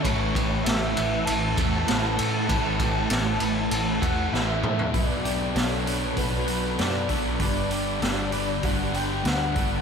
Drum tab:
RD |x-x-x-x-x-x-x-x-|x-x-x-x-x-x-----|----------------|----------------|
HH |----------------|----------------|o-o-o-o-o-o-o-o-|o-o-o-o-o-o-o-o-|
SD |----o-------o---|----o-------o---|----o-------o---|----o-------o---|
T2 |----------------|--------------o-|----------------|----------------|
FT |----------------|---------------o|----------------|----------------|
BD |o-o-------o-----|o-o-------o-----|o-------o-----o-|o-------o-----o-|